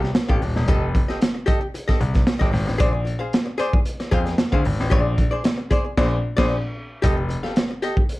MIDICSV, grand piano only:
0, 0, Header, 1, 2, 480
1, 0, Start_track
1, 0, Tempo, 529101
1, 620, Time_signature, 4, 2, 24, 8
1, 7436, End_track
2, 0, Start_track
2, 0, Title_t, "Grand piano"
2, 0, Program_c, 0, 0
2, 267, Note_on_c, 0, 33, 79
2, 349, Note_off_c, 0, 33, 0
2, 382, Note_on_c, 0, 27, 85
2, 474, Note_off_c, 0, 27, 0
2, 509, Note_on_c, 0, 28, 90
2, 591, Note_off_c, 0, 28, 0
2, 617, Note_on_c, 0, 29, 103
2, 887, Note_off_c, 0, 29, 0
2, 1820, Note_on_c, 0, 36, 91
2, 1996, Note_off_c, 0, 36, 0
2, 2185, Note_on_c, 0, 32, 89
2, 2268, Note_off_c, 0, 32, 0
2, 2295, Note_on_c, 0, 32, 102
2, 2390, Note_off_c, 0, 32, 0
2, 2422, Note_on_c, 0, 33, 87
2, 2507, Note_off_c, 0, 33, 0
2, 2540, Note_on_c, 0, 34, 93
2, 2809, Note_off_c, 0, 34, 0
2, 3737, Note_on_c, 0, 41, 91
2, 3914, Note_off_c, 0, 41, 0
2, 4108, Note_on_c, 0, 38, 103
2, 4191, Note_off_c, 0, 38, 0
2, 4225, Note_on_c, 0, 32, 90
2, 4317, Note_off_c, 0, 32, 0
2, 4355, Note_on_c, 0, 33, 96
2, 4435, Note_off_c, 0, 33, 0
2, 4459, Note_on_c, 0, 34, 107
2, 4728, Note_off_c, 0, 34, 0
2, 5420, Note_on_c, 0, 34, 121
2, 5587, Note_off_c, 0, 34, 0
2, 5790, Note_on_c, 0, 34, 96
2, 5950, Note_off_c, 0, 34, 0
2, 6385, Note_on_c, 0, 29, 98
2, 6652, Note_off_c, 0, 29, 0
2, 7436, End_track
0, 0, End_of_file